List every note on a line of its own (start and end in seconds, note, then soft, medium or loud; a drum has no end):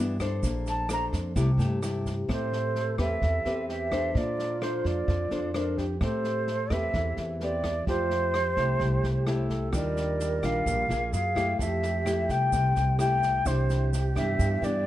0.00 0.39 G2 medium
0.00 0.40 G2 medium
0.00 0.16 E3 medium
0.00 0.16 B3 medium
0.00 0.16 D4 medium
0.20 0.86 D4 medium
0.20 0.86 A4 medium
0.20 0.86 C5 medium
0.20 kick soft
0.20 cross-stick medium
0.20 snare soft
0.20 shaker soft
0.43 1.08 A#1 medium
0.43 1.34 A#3 medium
0.43 kick medium
0.43 snare soft
0.43 shaker medium
0.66 0.89 A5 medium
0.66 snare soft
0.66 shaker soft
0.89 1.34 D4 medium
0.89 1.35 A4 medium
0.89 1.35 C5 medium
0.89 1.06 A#5 medium
0.89 cross-stick medium
0.89 snare soft
0.89 shaker medium
1.13 1.34 F2 medium
1.13 kick soft
1.13 snare soft
1.13 shaker soft
1.36 1.59 C2 loud
1.36 2.26 C3 medium
1.36 1.50 A3 medium
1.36 1.50 E4 medium
1.36 1.50 G4 medium
1.36 kick medium
1.36 snare soft
1.36 shaker medium
1.58 2.24 G2 medium
1.58 1.79 A3 medium
1.58 1.79 E4 medium
1.58 1.79 G4 medium
1.58 snare soft
1.58 shaker soft
1.82 2.12 A3 medium
1.82 2.12 E4 medium
1.82 2.13 G4 medium
1.82 cross-stick medium
1.82 snare soft
1.82 shaker medium
2.06 kick soft
2.06 snare soft
2.06 shaker soft
2.28 2.94 A2 medium
2.28 3.19 A3 medium
2.28 2.95 C4 medium
2.28 2.95 G4 medium
2.28 3.70 A4 medium
2.28 2.96 C5 medium
2.28 kick medium
2.28 cross-stick medium
2.28 snare soft
2.53 snare soft
2.75 snare soft
2.98 3.20 E2 medium
2.98 3.41 C4 medium
2.98 3.42 G4 medium
2.98 3.42 B4 medium
2.98 3.65 E5 loud
2.98 kick soft
2.98 cross-stick medium
2.98 snare soft
3.22 3.44 E2 medium
3.22 4.13 E3 medium
3.22 kick medium
3.22 snare soft
3.45 4.11 E2 medium
3.45 3.88 C4 medium
3.45 3.88 G4 medium
3.45 3.88 B4 medium
3.45 snare soft
3.68 4.14 G4 medium
3.68 4.19 E5 loud
3.68 snare soft
3.91 4.58 D4 medium
3.91 4.58 A4 medium
3.91 4.58 C5 medium
3.91 kick soft
3.91 cross-stick medium
3.91 snare soft
4.14 4.81 A#2 medium
4.14 5.05 A#3 medium
4.14 5.50 F4 medium
4.14 4.65 D5 medium
4.14 kick medium
4.14 snare soft
4.39 snare soft
4.61 5.27 D4 medium
4.61 5.28 A4 medium
4.61 5.28 C5 medium
4.61 4.88 C5 medium
4.61 cross-stick medium
4.61 snare soft
4.85 5.06 F2 medium
4.85 5.79 D5 medium
4.85 kick soft
4.85 snare soft
5.08 5.30 F2 loud
5.08 5.99 F3 medium
5.08 kick medium
5.08 snare soft
5.31 5.97 F2 medium
5.31 5.51 D4 medium
5.31 5.51 A4 medium
5.31 5.51 C5 medium
5.31 snare soft
5.54 5.84 D4 medium
5.54 5.85 A4 medium
5.54 5.79 A#4 medium
5.54 5.85 C5 medium
5.54 cross-stick medium
5.54 snare soft
5.77 6.01 G4 medium
5.77 kick soft
5.77 snare soft
6.01 6.67 A2 medium
6.01 6.92 A3 medium
6.01 6.47 C4 medium
6.01 6.47 G4 medium
6.01 7.56 A4 medium
6.01 6.74 C5 medium
6.01 kick medium
6.01 cross-stick medium
6.01 snare soft
6.24 snare soft
6.47 snare soft
6.70 6.92 E2 medium
6.70 7.38 C4 medium
6.70 7.38 G4 medium
6.70 7.38 B4 medium
6.70 7.18 E5 loud
6.70 kick soft
6.70 cross-stick medium
6.70 snare soft
6.93 7.16 E2 loud
6.93 7.86 E3 medium
6.93 kick medium
6.93 snare soft
7.17 7.83 E2 medium
7.17 snare soft
7.40 7.72 C4 medium
7.40 7.72 G4 medium
7.40 7.72 B4 medium
7.40 7.85 D5 loud
7.40 snare soft
7.64 kick soft
7.64 cross-stick medium
7.64 snare soft
7.85 8.53 F2 medium
7.85 8.78 F3 medium
7.85 8.34 A3 medium
7.85 8.35 F4 medium
7.85 8.34 G4 medium
7.85 9.47 C5 loud
7.85 kick medium
7.85 snare soft
8.10 snare soft
8.33 9.27 G4 medium
8.33 cross-stick medium
8.33 snare soft
8.57 8.79 C2 medium
8.57 9.23 A3 medium
8.57 9.24 E4 medium
8.57 9.24 G4 medium
8.57 kick soft
8.57 snare soft
8.80 9.02 C2 loud
8.80 9.72 C3 medium
8.80 kick medium
8.80 snare soft
9.03 9.69 C2 medium
9.03 snare soft
9.26 9.70 A3 medium
9.26 9.70 E4 medium
9.26 9.70 G4 medium
9.26 9.74 A4 medium
9.26 cross-stick medium
9.26 snare soft
9.50 kick soft
9.50 snare soft
9.72 10.39 D#2 medium
9.72 10.64 D#3 medium
9.72 10.39 G3 medium
9.72 10.39 D4 medium
9.72 10.40 F4 medium
9.72 11.14 A#4 loud
9.72 10.47 D5 medium
9.72 kick medium
9.72 cross-stick medium
9.72 snare soft
9.72 shaker medium
9.96 snare soft
9.96 shaker soft
10.20 snare soft
10.20 shaker medium
10.42 10.65 A#1 medium
10.42 10.86 G3 medium
10.42 10.86 D4 medium
10.42 10.86 F4 medium
10.42 11.14 F5 medium
10.42 kick soft
10.42 cross-stick medium
10.42 snare soft
10.42 shaker soft
10.66 10.88 A#1 loud
10.66 11.11 A#2 medium
10.66 kick medium
10.66 snare soft
10.66 shaker medium
10.89 11.12 A#1 medium
10.89 11.32 A#3 medium
10.89 11.33 F4 medium
10.89 11.33 G#4 medium
10.89 snare soft
10.89 shaker soft
11.13 11.56 F#2 medium
11.13 11.58 G#4 medium
11.13 11.57 F5 medium
11.13 snare soft
11.13 shaker medium
11.35 12.02 A3 medium
11.35 12.03 E4 medium
11.35 12.02 G4 medium
11.35 kick soft
11.35 cross-stick medium
11.35 snare soft
11.35 shaker soft
11.59 12.26 F2 medium
11.59 12.50 F3 medium
11.59 13.15 G4 medium
11.59 12.33 E5 loud
11.59 kick medium
11.59 snare soft
11.59 shaker medium
11.82 snare soft
11.82 shaker soft
12.05 12.95 A3 medium
12.05 12.96 E4 medium
12.05 12.96 G4 medium
12.05 cross-stick medium
12.05 snare soft
12.05 shaker medium
12.29 12.51 C2 medium
12.29 12.99 G5 loud
12.29 kick soft
12.29 snare soft
12.29 shaker soft
12.52 12.74 C2 loud
12.52 13.44 C3 medium
12.52 kick medium
12.52 snare soft
12.52 shaker medium
12.76 13.42 C2 medium
12.76 snare soft
12.76 shaker soft
12.98 13.42 A3 medium
12.98 13.42 E4 medium
12.98 13.42 G4 medium
12.98 13.48 G5 loud
12.98 cross-stick medium
12.98 snare soft
12.98 shaker medium
13.23 kick soft
13.23 snare soft
13.23 shaker soft
13.45 14.12 C2 medium
13.45 14.36 C3 medium
13.45 13.92 E3 medium
13.45 13.92 D4 medium
13.45 14.87 G4 loud
13.45 13.89 C5 medium
13.45 kick medium
13.45 cross-stick medium
13.45 snare soft
13.45 shaker medium
13.70 snare soft
13.70 shaker soft
13.93 snare soft
13.93 shaker medium
14.15 14.38 G2 medium
14.15 14.59 E3 medium
14.15 14.59 B3 medium
14.15 14.59 D4 medium
14.15 14.66 E5 loud
14.15 kick soft
14.15 cross-stick medium
14.15 snare soft
14.15 shaker soft
14.39 14.61 G2 loud
14.39 14.87 G2 medium
14.39 kick medium
14.39 snare soft
14.39 shaker medium
14.62 14.87 G2 medium
14.62 14.87 E3 medium
14.62 14.87 B3 medium
14.62 14.87 D4 medium
14.62 14.87 D5 medium
14.62 snare soft
14.62 shaker soft